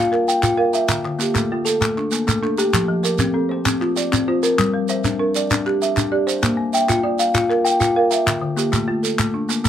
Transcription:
0.00 0.28 F4 medium
0.00 0.12 D5 medium
0.00 0.28 F5 medium
0.12 0.56 A#4 medium
0.12 clap soft
0.28 0.74 G5 medium
0.28 shekere medium
0.43 0.74 F4 medium
0.43 clap soft
0.43 shekere medium
0.57 0.89 A#4 medium
0.57 1.04 F5 medium
0.73 1.04 E5 medium
0.73 1.20 E5 medium
0.73 shekere medium
0.89 1.20 D3 medium
0.89 clap medium
0.89 shekere medium
1.05 1.36 D3 medium
1.05 clap soft
1.19 1.66 A#3 medium
1.19 1.67 G4 medium
1.19 clap soft
1.19 shekere medium
1.34 1.66 A3 medium
1.34 clap medium
1.34 shekere medium
1.52 1.82 A3 medium
1.52 1.98 F4 medium
1.65 2.12 A4 medium
1.65 2.13 A4 medium
1.65 shekere medium
1.81 2.12 A3 medium
1.81 clap medium
1.81 shekere medium
1.97 2.28 D4 medium
1.97 clap soft
2.12 2.58 A#3 medium
2.12 clap soft
2.12 shekere medium
2.27 2.58 A3 medium
2.27 clap soft
2.27 shekere medium
2.43 2.74 D4 medium
2.43 2.89 A4 medium
2.43 clap soft
2.58 2.89 G4 medium
2.58 3.04 G4 medium
2.58 clap soft
2.58 shekere medium
2.73 3.04 F3 medium
2.73 clap medium
2.73 shekere medium
2.88 3.19 F3 medium
3.03 3.50 A#4 medium
3.03 3.50 D5 medium
3.03 shekere medium
3.19 3.51 C4 medium
3.19 clap medium
3.19 shekere medium
3.34 3.65 C4 medium
3.34 3.81 A4 medium
3.49 3.96 C5 medium
3.49 3.97 C5 medium
3.66 3.97 C4 medium
3.66 clap medium
3.66 shekere medium
3.81 4.27 F4 medium
3.81 clap soft
3.96 4.43 D5 medium
3.96 shekere medium
4.12 4.43 C4 medium
4.12 clap medium
4.12 shekere medium
4.28 4.58 F4 medium
4.28 4.74 C5 medium
4.43 4.89 A#4 medium
4.43 4.74 A#4 medium
4.43 shekere medium
4.58 4.89 G3 medium
4.58 clap medium
4.58 shekere medium
4.74 5.04 G3 medium
4.89 5.35 C5 medium
4.89 5.35 E5 medium
4.89 shekere medium
5.04 5.35 D4 medium
5.04 clap soft
5.04 shekere medium
5.19 5.50 D4 medium
5.19 5.66 A#4 medium
5.35 5.81 D5 medium
5.35 5.82 D5 medium
5.35 shekere medium
5.51 5.81 D4 medium
5.51 clap medium
5.51 shekere medium
5.66 5.97 G4 medium
5.66 clap soft
5.82 6.27 E5 medium
5.82 6.28 E5 medium
5.82 shekere medium
5.97 6.27 D4 medium
5.97 clap soft
5.97 shekere medium
6.12 6.42 G4 medium
6.12 6.58 D5 medium
6.27 6.73 C5 medium
6.27 6.58 C5 medium
6.27 shekere medium
6.42 6.73 A#3 medium
6.42 clap medium
6.42 shekere medium
6.57 6.88 A#3 medium
6.73 7.19 E5 medium
6.73 7.20 G5 medium
6.73 shekere medium
6.89 7.19 F4 medium
6.89 clap soft
6.89 shekere medium
7.03 7.34 F4 medium
7.03 7.50 D5 medium
7.19 7.65 F5 medium
7.19 shekere medium
7.34 7.65 F4 medium
7.34 clap medium
7.34 shekere medium
7.50 7.95 A#4 medium
7.50 clap soft
7.65 8.11 G5 medium
7.65 shekere medium
7.80 8.11 F4 medium
7.80 clap soft
7.80 shekere medium
7.96 8.27 A#4 medium
7.96 8.42 F5 medium
8.11 8.41 E5 medium
8.11 8.57 E5 medium
8.11 shekere medium
8.26 8.57 D3 loud
8.26 clap medium
8.26 shekere medium
8.41 8.72 D3 medium
8.57 9.03 A#3 medium
8.57 9.03 G4 medium
8.57 clap soft
8.57 shekere medium
8.72 9.03 A3 medium
8.72 clap soft
8.72 shekere medium
8.88 9.18 A3 medium
8.88 9.34 F4 medium
9.03 9.49 A4 medium
9.03 shekere medium
9.19 9.49 A3 medium
9.19 clap medium
9.19 shekere medium
9.34 9.64 D4 medium
9.49 9.69 A#3 medium
9.49 clap soft
9.49 shekere medium
9.64 9.69 A3 medium
9.64 shekere medium

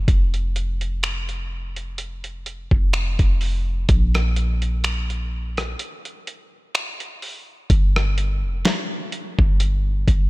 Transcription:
0.08 2.68 F1 loud
0.08 kick loud
0.08 closed hi-hat medium
0.34 closed hi-hat soft
0.56 closed hi-hat medium
0.81 closed hi-hat soft
1.03 finger snap loud
1.03 closed hi-hat medium
1.29 closed hi-hat soft
1.76 closed hi-hat soft
1.98 closed hi-hat medium
2.24 closed hi-hat soft
2.46 closed hi-hat medium
2.71 3.17 F1 loud
2.71 kick medium
2.93 finger snap loud
2.93 closed hi-hat medium
3.19 3.86 F1 loud
3.19 kick medium
3.19 closed hi-hat soft
3.41 open hi-hat medium
3.89 5.75 A#1 loud
3.89 kick loud
3.89 closed hi-hat medium
4.14 cross-stick loud
4.14 closed hi-hat soft
4.36 closed hi-hat medium
4.62 closed hi-hat medium
4.84 finger snap loud
4.84 closed hi-hat medium
5.10 closed hi-hat soft
5.57 cross-stick medium
5.57 closed hi-hat soft
5.79 closed hi-hat medium
6.05 closed hi-hat soft
6.27 closed hi-hat medium
6.75 finger snap loud
6.75 closed hi-hat medium
7.00 closed hi-hat soft
7.22 open hi-hat medium
7.70 8.45 G1 loud
7.70 kick loud
7.70 closed hi-hat medium
7.96 cross-stick loud
8.18 closed hi-hat medium
8.43 8.64 F1 loud
8.65 snare loud
8.65 closed hi-hat medium
9.12 closed hi-hat medium
9.39 10.05 G1 loud
9.39 kick medium
9.60 closed hi-hat medium
10.08 10.30 G1 loud
10.08 kick medium
10.08 closed hi-hat medium

